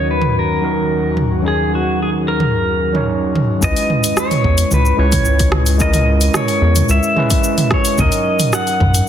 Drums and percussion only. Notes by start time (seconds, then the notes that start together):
0.21 mid tom
1.17 mid tom
2.40 mid tom
2.95 mid tom
3.35 mid tom
3.62 kick, shaker
3.77 open hi-hat, shaker
3.90 mid tom
4.04 open hi-hat, shaker
4.17 cross-stick, shaker
4.31 mid tom, open hi-hat, shaker
4.44 kick
4.58 open hi-hat, shaker
4.71 mid tom, shaker
4.85 shaker
5.12 kick, mid tom, open hi-hat, shaker
5.25 shaker
5.39 kick, open hi-hat, shaker
5.52 cross-stick, mid tom
5.66 open hi-hat, shaker
5.80 kick, shaker
5.94 mid tom, open hi-hat, shaker
6.21 open hi-hat, shaker
6.34 cross-stick, mid tom, shaker
6.48 open hi-hat, shaker
6.76 mid tom, open hi-hat, shaker
6.89 shaker
7.03 shaker
7.17 mid tom
7.30 kick, open hi-hat, shaker
7.44 shaker
7.58 mid tom, open hi-hat, shaker
7.71 kick, cross-stick
7.85 open hi-hat, shaker
7.98 kick, mid tom, shaker
8.12 open hi-hat, shaker
8.40 mid tom, open hi-hat, shaker
8.53 cross-stick, shaker
8.67 open hi-hat, shaker
8.80 kick, mid tom
8.94 open hi-hat, shaker